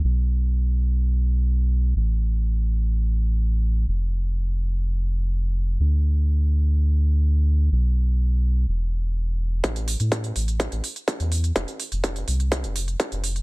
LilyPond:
<<
  \new Staff \with { instrumentName = "Analog synth bass" } { \clef bass \time 4/4 \key a \minor \tempo 4 = 125 b,,1 | a,,1 | f,,1 | d,1 |
b,,2 e,,2 | a,,8. a,8. a,,8. a,,16 r8. e,8. | f,,16 r8 f,,8. c,8. f,,8. r16 f,,8. | }
  \new DrumStaff \with { instrumentName = "Drums" } \drummode { \time 4/4 r4 r4 r4 r4 | r4 r4 r4 r4 | r4 r4 r4 r4 | r4 r4 r4 r4 |
r4 r4 r4 r4 | <hh bd>16 hh16 hho16 hh16 <hh bd>16 hh16 hho16 hh16 <hh bd>16 hh16 hho16 hh16 <hh bd>16 hh16 hho16 hh16 | <hh bd>16 hh16 hho16 hh16 <hh bd>16 hh16 hho16 hh16 <hh bd>16 hh16 hho16 hh16 <hh bd>16 hh16 hho16 hh16 | }
>>